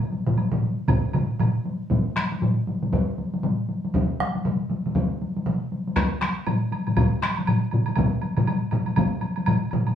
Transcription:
0.03 taiko high
0.12 taiko high
0.27 taiko low-mid, taiko mid
0.38 taiko high, high woodblock
0.52 taiko low-mid, taiko mid, taiko high
0.63 taiko high
0.78 taiko high
0.88 taiko, taiko low-mid, taiko mid, taiko high, high woodblock
1.04 taiko high
1.13 taiko low-mid, taiko mid, taiko high, high woodblock
1.40 taiko low-mid, taiko mid, taiko high, high woodblock
1.55 taiko high
1.65 taiko high
1.81 taiko high
1.91 taiko, taiko low-mid, taiko high
2.16 taiko rim, taiko high
2.32 taiko high
2.42 taiko low-mid, taiko high
2.67 taiko low-mid, taiko high
2.83 taiko low-mid, taiko high
2.93 taiko, taiko high
3.18 taiko high
3.34 taiko high
3.43 taiko low-mid, taiko high
3.69 taiko high
3.85 taiko high
3.94 taiko, taiko mid, taiko high
4.20 taiko rim, taiko high
4.35 taiko high
4.45 taiko mid, taiko high
4.70 taiko mid, taiko high
4.86 taiko mid, taiko high
4.95 taiko, taiko high
5.22 taiko high
5.37 taiko high
5.46 taiko mid, taiko high
5.72 taiko high
5.87 taiko high
5.96 taiko rim, taiko, taiko high, high woodblock
6.21 taiko rim, taiko high, high woodblock
6.47 taiko low-mid, taiko high, high woodblock
6.72 taiko high, high woodblock
6.87 taiko low-mid, taiko high, high woodblock
6.97 taiko, taiko low-mid, taiko high, high woodblock
7.22 taiko rim, taiko high, high woodblock
7.37 taiko high, high woodblock
7.47 taiko low-mid, taiko high, high woodblock
7.71 taiko low-mid, taiko high, high woodblock
7.86 taiko high, high woodblock
7.96 taiko, taiko low-mid, taiko mid, taiko high, high woodblock
8.22 taiko high, high woodblock
8.37 taiko low-mid, taiko mid, taiko high, high woodblock
8.47 taiko high, high woodblock
8.71 taiko low-mid, taiko mid, taiko high, high woodblock
8.86 taiko high, high woodblock
8.96 taiko, taiko low-mid, taiko mid, taiko high, high woodblock
9.21 taiko high, high woodblock
9.36 taiko high, high woodblock
9.46 taiko low-mid, taiko mid, taiko high, high woodblock
9.71 taiko low-mid, taiko mid, taiko high, high woodblock
9.87 taiko high, high woodblock

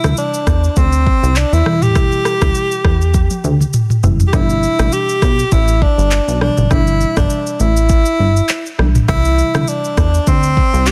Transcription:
Already playing: E4
0.04 D2 C3 E3 G3 E4, cross-stick, shaker
0.17 D4, shaker
0.34 shaker
0.47 E2, kick, cross-stick, shaker
0.64 shaker
0.76 D2 C4, kick, shaker
0.92 shaker
1.07 kick
1.23 C2, shaker
1.36 D4, clap, shaker
1.53 E2 E4, shaker
1.66 E2 B2 E3 G3 E4, cross-stick
1.82 G4, mid tom, shaker
1.95 B2 E3 G3 E4, kick, cross-stick, shaker
2.12 shaker
2.25 cross-stick, shaker
2.41 D2 B2 E3 G3 E4, kick, cross-stick, shaker
2.55 shaker
2.71 shaker
2.85 E2, kick, cross-stick
3.01 shaker
3.14 kick, high tom, shaker
3.30 high tom, shaker
3.44 D2, mid tom, shaker
3.60 mid tom, shaker
3.73 mid tom, shaker
3.90 mid tom, shaker
4.03 F#1 B2 E3 G3 E4, floor tom, shaker
4.20 floor tom, shaker
4.27 G4
4.33 G1 B2 E3 G3 D4 E4, kick, cross-stick, shaker
4.49 shaker
4.63 shaker
4.79 A1 B2 E3 G3 D4, cross-stick, shaker
4.92 G4, shaker
5.09 shaker
5.22 B1, kick, cross-stick, shaker
5.39 shaker
5.51 A1 E4, kick, shaker
5.68 shaker
5.82 D4, kick
5.98 G1, shaker
6.11 clap, shaker
6.28 B1, shaker
6.41 B2 E3 G3 D4, cross-stick
6.57 F#1, mid tom, shaker
6.71 G1 B2 E3 G3 D4 E4, kick, cross-stick, shaker
6.87 shaker
7.01 shaker
7.17 G1 B2 E3 G3 D4, kick, cross-stick, shaker
7.30 shaker
7.47 shaker
7.60 A1 E4, shaker
7.76 shaker
7.89 kick, shaker
8.05 shaker
8.19 G1
8.37 shaker
8.48 clap, shaker
8.66 shaker
8.78 B1 B2 E3 G3 D4, cross-stick
8.95 mid tom, shaker
9.08 C2 C3 E3 G3 E4, kick, cross-stick, shaker
9.25 shaker
9.38 shaker
9.54 D2 C3 E3 G3 E4, cross-stick, shaker
9.68 D4, shaker
9.84 shaker
9.97 E2, kick, cross-stick, shaker
10.14 shaker
10.27 D2 C4, kick, shaker
10.43 shaker
10.57 kick
10.73 C2, shaker
10.86 G4, clap, shaker

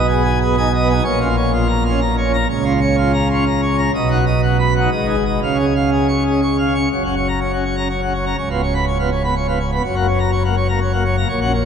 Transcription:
Already playing: B1 B2
0.08 G#4
0.24 G#5
0.41 G#4
0.46 B3
0.57 D#4 G#5
0.74 D#5
0.82 B3
0.90 D#4 G#5
1.04 A#1 A#2 C#5
1.17 C#4
1.21 F4
1.37 C#5
1.53 F4
1.69 A#5
1.85 C#4 F4
2.01 A#5
2.17 C#5
2.25 C#4
2.34 A#5
2.49 C#2 C#3 C#5
2.62 C#4 F4
2.81 C#5
2.97 F4
3.13 A#5
3.30 F4
3.34 C#4
3.46 A#5
3.62 C#5
3.70 C#4
3.78 A#5
3.94 B1 B2 D#5
4.06 D#4 F#4
4.27 D#5
4.43 F#4
4.60 B5
4.76 F#4
4.80 D#4
4.91 G#1 G#2 D#5
5.05 D#4 G#4
5.26 D#5
5.42 C#2 C#3 F5
5.55 C#4 G#4
5.75 F5
5.92 G#4
6.09 C#6
6.26 G#4
6.30 C#4
6.43 C#6
6.59 F5
6.67 C#4
6.75 C#6
6.92 F#1 F#2 C#5
7.04 C#4 F#4
7.17 C#5
7.28 A#5
7.41 C#5
7.53 C#4 F#4
7.65 C#5
7.77 C#4 A#5
7.90 C#5
8.02 C#4 F#4
8.14 C#5
8.26 C#4 A#5
8.38 C#1 C#2 C#5
8.50 B3 F4
8.63 C#5
8.75 B5
8.87 C#5
8.99 B3 F4
9.12 C#5
9.24 B3 B5
9.36 C#5
9.48 B3 F4
9.60 C#5
9.72 B3 B5
9.83 F#1 F#2 C#5
9.95 A#3 F#4
10.08 C#5
10.19 A#5
10.32 C#5
10.44 A#3 F#4
10.56 C#5
10.69 A#3 A#5
10.82 C#5
10.92 A#3 F#4
11.05 C#5
11.17 A#3 A#5
11.28 A#1 A#2 C#5
11.41 C#4 F#4
11.53 C#5

